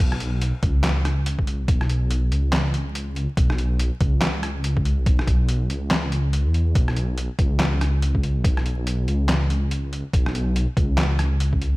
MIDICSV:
0, 0, Header, 1, 3, 480
1, 0, Start_track
1, 0, Tempo, 422535
1, 1912, Time_signature, 4, 2, 24, 8
1, 13368, End_track
2, 0, Start_track
2, 0, Title_t, "Detuned saw bass"
2, 0, Program_c, 0, 39
2, 0, Note_on_c, 0, 35, 100
2, 598, Note_off_c, 0, 35, 0
2, 712, Note_on_c, 0, 37, 82
2, 1816, Note_on_c, 0, 35, 93
2, 1833, Note_off_c, 0, 37, 0
2, 2620, Note_off_c, 0, 35, 0
2, 2632, Note_on_c, 0, 37, 81
2, 3717, Note_off_c, 0, 37, 0
2, 3830, Note_on_c, 0, 35, 100
2, 4436, Note_off_c, 0, 35, 0
2, 4550, Note_on_c, 0, 37, 83
2, 5655, Note_on_c, 0, 35, 91
2, 5672, Note_off_c, 0, 37, 0
2, 6459, Note_off_c, 0, 35, 0
2, 6471, Note_on_c, 0, 37, 80
2, 7336, Note_on_c, 0, 40, 90
2, 7353, Note_off_c, 0, 37, 0
2, 7660, Note_off_c, 0, 40, 0
2, 7672, Note_on_c, 0, 35, 101
2, 8277, Note_off_c, 0, 35, 0
2, 8393, Note_on_c, 0, 37, 80
2, 9497, Note_on_c, 0, 35, 94
2, 9514, Note_off_c, 0, 37, 0
2, 10300, Note_off_c, 0, 35, 0
2, 10315, Note_on_c, 0, 37, 83
2, 11398, Note_off_c, 0, 37, 0
2, 11512, Note_on_c, 0, 35, 99
2, 12117, Note_off_c, 0, 35, 0
2, 12233, Note_on_c, 0, 37, 82
2, 13353, Note_off_c, 0, 37, 0
2, 13368, End_track
3, 0, Start_track
3, 0, Title_t, "Drums"
3, 137, Note_on_c, 9, 37, 52
3, 232, Note_on_c, 9, 42, 56
3, 250, Note_off_c, 9, 37, 0
3, 345, Note_off_c, 9, 42, 0
3, 472, Note_on_c, 9, 42, 84
3, 585, Note_off_c, 9, 42, 0
3, 712, Note_on_c, 9, 42, 54
3, 713, Note_on_c, 9, 36, 102
3, 825, Note_off_c, 9, 42, 0
3, 827, Note_off_c, 9, 36, 0
3, 952, Note_on_c, 9, 38, 117
3, 952, Note_on_c, 9, 39, 95
3, 952, Note_on_c, 9, 42, 85
3, 1066, Note_off_c, 9, 38, 0
3, 1066, Note_off_c, 9, 39, 0
3, 1066, Note_off_c, 9, 42, 0
3, 1194, Note_on_c, 9, 37, 54
3, 1194, Note_on_c, 9, 42, 55
3, 1307, Note_off_c, 9, 37, 0
3, 1307, Note_off_c, 9, 42, 0
3, 1433, Note_on_c, 9, 42, 85
3, 1547, Note_off_c, 9, 42, 0
3, 1575, Note_on_c, 9, 36, 61
3, 1673, Note_on_c, 9, 42, 56
3, 1689, Note_off_c, 9, 36, 0
3, 1787, Note_off_c, 9, 42, 0
3, 1911, Note_on_c, 9, 36, 125
3, 1912, Note_on_c, 9, 42, 82
3, 2025, Note_off_c, 9, 36, 0
3, 2025, Note_off_c, 9, 42, 0
3, 2056, Note_on_c, 9, 37, 53
3, 2153, Note_on_c, 9, 42, 54
3, 2170, Note_off_c, 9, 37, 0
3, 2267, Note_off_c, 9, 42, 0
3, 2392, Note_on_c, 9, 42, 80
3, 2506, Note_off_c, 9, 42, 0
3, 2634, Note_on_c, 9, 42, 53
3, 2748, Note_off_c, 9, 42, 0
3, 2873, Note_on_c, 9, 38, 124
3, 2873, Note_on_c, 9, 39, 95
3, 2873, Note_on_c, 9, 42, 79
3, 2986, Note_off_c, 9, 38, 0
3, 2986, Note_off_c, 9, 39, 0
3, 2986, Note_off_c, 9, 42, 0
3, 3112, Note_on_c, 9, 42, 54
3, 3225, Note_off_c, 9, 42, 0
3, 3353, Note_on_c, 9, 42, 81
3, 3467, Note_off_c, 9, 42, 0
3, 3593, Note_on_c, 9, 42, 54
3, 3707, Note_off_c, 9, 42, 0
3, 3831, Note_on_c, 9, 36, 127
3, 3832, Note_on_c, 9, 42, 80
3, 3944, Note_off_c, 9, 36, 0
3, 3946, Note_off_c, 9, 42, 0
3, 3975, Note_on_c, 9, 37, 53
3, 4072, Note_on_c, 9, 42, 53
3, 4089, Note_off_c, 9, 37, 0
3, 4186, Note_off_c, 9, 42, 0
3, 4312, Note_on_c, 9, 42, 77
3, 4425, Note_off_c, 9, 42, 0
3, 4550, Note_on_c, 9, 42, 52
3, 4551, Note_on_c, 9, 36, 112
3, 4664, Note_off_c, 9, 42, 0
3, 4665, Note_off_c, 9, 36, 0
3, 4790, Note_on_c, 9, 38, 127
3, 4790, Note_on_c, 9, 39, 90
3, 4790, Note_on_c, 9, 42, 78
3, 4904, Note_off_c, 9, 38, 0
3, 4904, Note_off_c, 9, 39, 0
3, 4904, Note_off_c, 9, 42, 0
3, 5032, Note_on_c, 9, 37, 51
3, 5032, Note_on_c, 9, 42, 52
3, 5146, Note_off_c, 9, 37, 0
3, 5146, Note_off_c, 9, 42, 0
3, 5271, Note_on_c, 9, 42, 76
3, 5385, Note_off_c, 9, 42, 0
3, 5415, Note_on_c, 9, 36, 65
3, 5514, Note_on_c, 9, 42, 53
3, 5529, Note_off_c, 9, 36, 0
3, 5627, Note_off_c, 9, 42, 0
3, 5752, Note_on_c, 9, 36, 127
3, 5752, Note_on_c, 9, 42, 77
3, 5865, Note_off_c, 9, 42, 0
3, 5866, Note_off_c, 9, 36, 0
3, 5896, Note_on_c, 9, 37, 54
3, 5992, Note_on_c, 9, 36, 64
3, 5993, Note_on_c, 9, 42, 54
3, 6010, Note_off_c, 9, 37, 0
3, 6105, Note_off_c, 9, 36, 0
3, 6107, Note_off_c, 9, 42, 0
3, 6232, Note_on_c, 9, 42, 76
3, 6346, Note_off_c, 9, 42, 0
3, 6475, Note_on_c, 9, 42, 51
3, 6588, Note_off_c, 9, 42, 0
3, 6713, Note_on_c, 9, 38, 122
3, 6713, Note_on_c, 9, 39, 89
3, 6713, Note_on_c, 9, 42, 76
3, 6827, Note_off_c, 9, 38, 0
3, 6827, Note_off_c, 9, 39, 0
3, 6827, Note_off_c, 9, 42, 0
3, 6953, Note_on_c, 9, 42, 53
3, 7067, Note_off_c, 9, 42, 0
3, 7192, Note_on_c, 9, 42, 76
3, 7306, Note_off_c, 9, 42, 0
3, 7433, Note_on_c, 9, 42, 51
3, 7547, Note_off_c, 9, 42, 0
3, 7672, Note_on_c, 9, 36, 123
3, 7672, Note_on_c, 9, 42, 75
3, 7786, Note_off_c, 9, 36, 0
3, 7786, Note_off_c, 9, 42, 0
3, 7816, Note_on_c, 9, 37, 54
3, 7912, Note_on_c, 9, 42, 51
3, 7930, Note_off_c, 9, 37, 0
3, 8026, Note_off_c, 9, 42, 0
3, 8152, Note_on_c, 9, 42, 76
3, 8265, Note_off_c, 9, 42, 0
3, 8392, Note_on_c, 9, 36, 105
3, 8392, Note_on_c, 9, 42, 51
3, 8506, Note_off_c, 9, 36, 0
3, 8506, Note_off_c, 9, 42, 0
3, 8632, Note_on_c, 9, 38, 121
3, 8632, Note_on_c, 9, 39, 83
3, 8632, Note_on_c, 9, 42, 76
3, 8745, Note_off_c, 9, 38, 0
3, 8745, Note_off_c, 9, 39, 0
3, 8745, Note_off_c, 9, 42, 0
3, 8875, Note_on_c, 9, 37, 53
3, 8875, Note_on_c, 9, 42, 52
3, 8988, Note_off_c, 9, 37, 0
3, 8988, Note_off_c, 9, 42, 0
3, 9115, Note_on_c, 9, 42, 77
3, 9229, Note_off_c, 9, 42, 0
3, 9255, Note_on_c, 9, 36, 62
3, 9354, Note_on_c, 9, 42, 53
3, 9369, Note_off_c, 9, 36, 0
3, 9468, Note_off_c, 9, 42, 0
3, 9593, Note_on_c, 9, 36, 119
3, 9595, Note_on_c, 9, 42, 82
3, 9706, Note_off_c, 9, 36, 0
3, 9708, Note_off_c, 9, 42, 0
3, 9738, Note_on_c, 9, 37, 56
3, 9834, Note_on_c, 9, 42, 53
3, 9852, Note_off_c, 9, 37, 0
3, 9948, Note_off_c, 9, 42, 0
3, 10074, Note_on_c, 9, 42, 79
3, 10188, Note_off_c, 9, 42, 0
3, 10315, Note_on_c, 9, 42, 54
3, 10428, Note_off_c, 9, 42, 0
3, 10554, Note_on_c, 9, 38, 118
3, 10554, Note_on_c, 9, 39, 85
3, 10554, Note_on_c, 9, 42, 79
3, 10668, Note_off_c, 9, 38, 0
3, 10668, Note_off_c, 9, 39, 0
3, 10668, Note_off_c, 9, 42, 0
3, 10795, Note_on_c, 9, 42, 55
3, 10908, Note_off_c, 9, 42, 0
3, 11033, Note_on_c, 9, 42, 79
3, 11147, Note_off_c, 9, 42, 0
3, 11277, Note_on_c, 9, 42, 54
3, 11391, Note_off_c, 9, 42, 0
3, 11513, Note_on_c, 9, 36, 117
3, 11516, Note_on_c, 9, 42, 81
3, 11626, Note_off_c, 9, 36, 0
3, 11630, Note_off_c, 9, 42, 0
3, 11659, Note_on_c, 9, 37, 57
3, 11757, Note_on_c, 9, 42, 55
3, 11772, Note_off_c, 9, 37, 0
3, 11871, Note_off_c, 9, 42, 0
3, 11995, Note_on_c, 9, 42, 80
3, 12109, Note_off_c, 9, 42, 0
3, 12232, Note_on_c, 9, 36, 99
3, 12235, Note_on_c, 9, 42, 54
3, 12346, Note_off_c, 9, 36, 0
3, 12349, Note_off_c, 9, 42, 0
3, 12473, Note_on_c, 9, 38, 116
3, 12473, Note_on_c, 9, 39, 89
3, 12473, Note_on_c, 9, 42, 82
3, 12587, Note_off_c, 9, 38, 0
3, 12587, Note_off_c, 9, 39, 0
3, 12587, Note_off_c, 9, 42, 0
3, 12712, Note_on_c, 9, 37, 58
3, 12712, Note_on_c, 9, 42, 54
3, 12826, Note_off_c, 9, 37, 0
3, 12826, Note_off_c, 9, 42, 0
3, 12954, Note_on_c, 9, 42, 83
3, 13067, Note_off_c, 9, 42, 0
3, 13095, Note_on_c, 9, 36, 58
3, 13195, Note_on_c, 9, 42, 55
3, 13209, Note_off_c, 9, 36, 0
3, 13309, Note_off_c, 9, 42, 0
3, 13368, End_track
0, 0, End_of_file